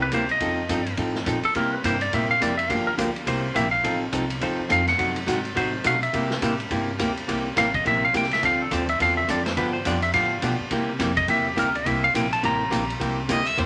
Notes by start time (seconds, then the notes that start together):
Already playing: C2
0.02 B4
0.12 D2 C3 G3 A#3 E4 G4 C5, kick, hi-hat pedal, ride
0.29 D#5, ride
0.40 F2 F3 C4 D#4 A4, kick, ride
0.69 G2 F3 C4 D#4 A4, kick, hi-hat pedal, ride
0.86 ride
0.97 A2 F3 C4 D#4 A4, kick, ride
1.15 snare
1.26 A#2 F3 C4 D#4 A4, kick, hi-hat pedal, ride
1.43 A4, muted upright bass stroke, ride
1.55 C3 G3 A#3 E4 G4 A#4, kick, ride
1.74 B4
1.84 G2 C3 G3 A#3 E4 G4 C5, kick, hi-hat pedal, ride
2.01 D5, ride
2.13 A#2 C3 G3 A#3 E4 G4 E5, kick, ride
2.31 F5
2.41 F2 C3 G3 A#3 E4 G4 D5, kick, hi-hat pedal, ride
2.58 E5, ride
2.69 G2 D3 F3 A#3 D4 G4 F5, kick, ride
2.87 A#4, muted upright bass stroke
2.98 D2 D3 F3 A#3 D4 G4, kick, hi-hat pedal, ride
3.16 ride
3.26 C2 C3 G3 A#3 E4 G4 C5, kick, ride
3.54 A#1 C3 G3 A#3 E4 G4 E5, kick, hi-hat pedal, ride
3.71 F5
3.83 A1 F3 C4 D#4 A4, kick, ride
4.12 C2 F3 C4 D#4 A4, kick, hi-hat pedal, ride
4.30 ride
4.41 D#2 F3 C4 D#4 A4 C5, kick, ride
4.59 muted upright bass stroke
4.69 F2 F3 C4 D#4 A4 F5, kick, hi-hat pedal, ride
4.87 F#5, snare, ride
4.98 F#2 C3 F#3 A3 D#4 F#4, kick, ride
5.16 ride
5.27 G#2 C3 F#3 A3 D#4 F#4, kick, hi-hat pedal, ride
5.45 ride
5.55 A2 C3 F#3 A3 D#4 F#4 C5, kick, ride
5.84 B2 C3 F#3 A3 D#4 F#4 F5, kick, hi-hat pedal, ride
6.03 E5, ride
6.13 C3 G3 A#3 E4 G4, kick, ride
6.30 snare
6.42 A2 C3 G3 A#3 E4 G4, kick, hi-hat pedal, ride
6.60 ride
6.71 G2 C3 G3 A#3 E4 G4, kick, ride
6.99 D2 C3 G3 A#3 E4 G4, kick, hi-hat pedal, ride
7.17 ride
7.27 C2 C3 G3 A#3 E4 G4, kick, ride
7.56 A1 C3 G3 A#3 E4 G4 F5, kick, snare, hi-hat pedal, ride
7.74 D#5, kick, ride
7.85 A#1 C3 G3 A#3 E4 G4 E5, kick, ride
8.05 F5
8.13 C2 C3 G3 A#3 E4 G4 G5, kick, hi-hat pedal, ride
8.24 snare
8.31 E5, snare, ride
8.42 D2 D3 F3 C4 D4 A4 F5, kick, ride
8.62 A4
8.71 D#2 D3 F3 C4 D4 A4 C5, kick, hi-hat pedal, ride
8.89 E5, ride
9.00 E2 D3 F3 C4 D4 A4 F5, kick, ride
9.17 E5
9.28 F2 D3 F3 C4 D4 A4 D5, kick, hi-hat pedal, ride
9.46 C5, snare, ride
9.56 G2 D3 F3 B3 D4 G4 B4, kick, ride
9.73 C5
9.85 F2 D3 F3 B3 D4 G4 D5, kick, hi-hat pedal, ride
10.02 E5, ride
10.13 A2 D3 F3 B3 D4 G4 F5, kick, ride
10.42 B2 D3 F3 B3 D4 G4, kick, hi-hat pedal, ride
10.60 muted upright bass stroke
10.71 C3 G3 A#3 E4 G4, kick, ride
10.99 F2 C3 G3 A#3 E4 G4, kick, snare, hi-hat pedal, ride
11.17 D#5, kick, ride
11.27 E2 C3 G3 A#3 E4 G4 E5, kick, ride
11.47 G4
11.56 D2 C3 G3 A#3 E4 G4 A#4, kick, hi-hat pedal, ride
11.75 D5, ride
11.85 C2 C3 G3 A#3 E4 G4 E5, kick, ride
12.04 F5
12.14 A#1 C3 G3 A#3 E4 G4 G5, kick, hi-hat pedal, ride
12.33 A5, ride
12.43 A1 C3 G3 A#3 E4 G4 A#5, kick, ride
12.70 A#1 C3 G3 A#3 E4 G4, kick, hi-hat pedal, ride
12.90 ride
12.99 C2 C3 G3 A#3 E4 G4, kick, ride
13.28 D2 C3 G3 A#3 E4 G4 D#5, kick, hi-hat pedal, ride
13.46 E5, ride
13.57 E2 C3 G3 A#3 E4 G4 C5, kick, ride